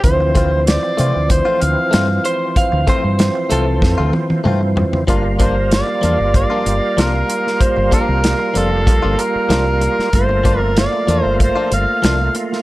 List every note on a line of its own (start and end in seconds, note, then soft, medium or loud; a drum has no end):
0.04 0.77 D2 medium
0.04 5.04 E3 medium
0.04 5.04 F3 medium
0.04 5.04 C4 medium
0.04 0.63 C5 loud
0.04 kick loud
0.04 closed hi-hat medium
0.21 muted clean electric guitar stroke soft
0.35 0.52 A3 medium
0.35 0.52 C4 medium
0.35 0.51 F4 medium
0.35 kick medium
0.35 closed hi-hat medium
0.52 muted clean electric guitar stroke soft
0.67 1.27 D5 medium
0.67 snare loud
0.67 closed hi-hat medium
0.83 muted clean electric guitar stroke soft
0.97 1.12 C3 medium
0.97 1.14 A3 medium
0.97 1.15 C4 medium
0.97 1.13 F4 medium
0.97 closed hi-hat medium
1.14 1.40 D2 medium
1.14 muted clean electric guitar stroke soft
1.30 1.64 C5 loud
1.30 muted clean electric guitar stroke soft
1.30 kick loud
1.30 closed hi-hat medium
1.45 1.59 A3 medium
1.45 1.60 C4 medium
1.45 1.61 F4 medium
1.60 1.75 D2 medium
1.60 2.25 F5 medium
1.60 muted clean electric guitar stroke soft
1.60 closed hi-hat medium
1.91 2.18 G2 medium
1.91 2.08 A3 medium
1.91 2.09 C4 medium
1.91 2.07 F4 medium
1.91 snare loud
1.91 closed hi-hat medium
2.08 muted clean electric guitar stroke soft
2.24 2.56 C5 medium
2.24 muted clean electric guitar stroke soft
2.24 closed hi-hat medium
2.56 2.87 F5 medium
2.56 kick loud
2.56 closed hi-hat medium
2.72 2.84 D2 medium
2.72 muted clean electric guitar stroke soft
2.87 3.04 A3 medium
2.87 3.04 C4 medium
2.87 3.02 F4 medium
2.87 3.49 C5 medium
2.87 kick medium
2.87 closed hi-hat medium
3.04 3.29 G2 medium
3.04 muted clean electric guitar stroke soft
3.19 snare loud
3.19 closed hi-hat medium
3.35 muted clean electric guitar stroke soft
3.50 3.82 C2 medium
3.50 3.67 A3 medium
3.50 3.67 C4 medium
3.50 3.66 F4 medium
3.50 4.12 A4 medium
3.50 closed hi-hat medium
3.67 muted clean electric guitar stroke soft
3.82 3.95 F2 medium
3.82 muted clean electric guitar stroke soft
3.82 kick loud
3.82 snare medium
3.98 4.11 D2 medium
3.98 4.12 A3 medium
3.98 4.13 C4 medium
3.98 4.13 F4 medium
4.13 muted clean electric guitar stroke soft
4.13 high tom medium
4.30 muted fingered electric bass stroke soft
4.30 high tom medium
4.44 4.82 G2 medium
4.44 4.61 A3 medium
4.44 4.62 C4 medium
4.44 4.60 F4 medium
4.44 mid tom medium
4.61 muted clean electric guitar stroke soft
4.76 muted clean electric guitar stroke soft
4.76 floor tom medium
4.93 muted fingered electric bass stroke soft
4.93 floor tom medium
5.07 5.81 G1 medium
5.07 5.24 F3 medium
5.07 10.09 G3 medium
5.07 5.25 A#3 medium
5.07 10.10 A#3 medium
5.07 5.24 D4 medium
5.07 5.23 F4 medium
5.07 10.10 F4 medium
5.07 kick medium
5.07 closed hi-hat medium
5.24 muted clean electric guitar stroke soft
5.39 5.56 F3 medium
5.39 5.56 A#3 medium
5.39 5.56 D4 medium
5.39 5.55 F4 medium
5.39 5.70 C5 medium
5.39 kick medium
5.39 closed hi-hat medium
5.56 muted clean electric guitar stroke soft
5.71 6.32 D5 medium
5.71 snare loud
5.71 closed hi-hat medium
5.87 muted clean electric guitar stroke soft
6.02 6.16 E2 medium
6.02 6.19 F3 medium
6.02 6.19 A#3 medium
6.02 6.19 D4 medium
6.02 6.18 F4 medium
6.02 closed hi-hat medium
6.19 6.44 G1 medium
6.19 muted clean electric guitar stroke soft
6.34 7.01 D5 medium
6.34 muted clean electric guitar stroke soft
6.34 kick loud
6.34 closed hi-hat medium
6.50 6.65 F3 medium
6.50 6.65 A#3 medium
6.50 6.66 D4 medium
6.50 6.65 F4 medium
6.66 6.79 G1 medium
6.66 muted clean electric guitar stroke soft
6.66 closed hi-hat medium
6.97 7.22 C2 medium
6.97 7.14 F3 medium
6.97 7.14 A#3 medium
6.97 7.14 D4 medium
6.97 7.13 F4 medium
6.97 7.64 A#4 medium
6.97 snare loud
6.97 closed hi-hat medium
7.14 muted clean electric guitar stroke soft
7.29 muted clean electric guitar stroke soft
7.29 closed hi-hat medium
7.47 snare soft
7.61 7.93 C5 medium
7.61 kick loud
7.61 closed hi-hat medium
7.77 7.89 G1 medium
7.77 muted clean electric guitar stroke soft
7.92 8.08 F3 medium
7.92 8.08 A#3 medium
7.92 8.08 D4 medium
7.92 8.07 F4 medium
7.92 8.59 A#4 medium
7.92 kick medium
7.92 closed hi-hat medium
8.08 8.33 C2 medium
8.08 muted clean electric guitar stroke soft
8.24 snare loud
8.24 closed hi-hat medium
8.39 muted clean electric guitar stroke soft
8.54 8.87 F1 medium
8.54 8.71 F3 medium
8.54 8.72 A#3 medium
8.54 8.71 D4 medium
8.54 8.70 F4 medium
8.54 9.22 A4 medium
8.54 closed hi-hat medium
8.71 muted clean electric guitar stroke soft
8.86 9.00 A#1 medium
8.86 muted clean electric guitar stroke soft
8.86 kick loud
8.86 closed hi-hat medium
9.02 9.15 G1 medium
9.02 9.16 F3 soft
9.02 9.17 A#3 medium
9.02 9.18 D4 medium
9.02 9.18 F4 medium
9.17 10.14 A#4 medium
9.17 muted clean electric guitar stroke soft
9.17 closed hi-hat medium
9.35 muted fingered electric bass stroke soft
9.49 9.87 C2 medium
9.49 9.66 F3 medium
9.49 9.66 A#3 medium
9.49 9.65 D4 medium
9.49 9.64 F4 medium
9.49 snare loud
9.49 closed hi-hat medium
9.66 muted clean electric guitar stroke soft
9.81 muted clean electric guitar stroke soft
9.81 closed hi-hat medium
9.99 muted fingered electric bass stroke soft
9.99 snare soft
10.13 10.87 G1 medium
10.13 12.62 A3 medium
10.13 12.62 A#3 medium
10.13 12.62 F4 medium
10.13 10.59 C5 loud
10.13 kick loud
10.13 closed hi-hat medium
10.29 muted clean electric guitar stroke soft
10.44 10.61 F3 medium
10.44 10.61 A#3 medium
10.44 10.60 D4 medium
10.44 10.60 F4 medium
10.44 kick medium
10.44 closed hi-hat medium
10.59 10.74 A#4 loud
10.59 muted clean electric guitar stroke soft
10.77 11.23 D5 medium
10.77 snare loud
10.77 closed hi-hat medium
10.93 muted clean electric guitar stroke soft
11.08 11.21 E2 medium
11.08 11.24 F3 medium
11.08 11.25 A#3 medium
11.08 11.24 D4 medium
11.08 11.23 F4 medium
11.08 closed hi-hat medium
11.23 11.49 G1 medium
11.23 11.37 C5 medium
11.23 muted clean electric guitar stroke soft
11.40 11.71 C5 medium
11.40 muted clean electric guitar stroke soft
11.40 kick loud
11.40 closed hi-hat medium
11.56 11.70 F3 soft
11.56 11.71 A#3 medium
11.56 11.71 D4 medium
11.56 11.71 F4 medium
11.71 11.85 G1 medium
11.71 12.32 F5 loud
11.71 muted clean electric guitar stroke soft
11.71 closed hi-hat medium
12.02 12.28 C2 medium
12.02 12.19 F3 medium
12.02 12.20 A#3 medium
12.02 12.20 D4 medium
12.02 12.18 F4 medium
12.02 snare loud
12.02 closed hi-hat medium
12.19 muted clean electric guitar stroke soft
12.35 muted clean electric guitar stroke soft
12.35 closed hi-hat medium
12.53 snare soft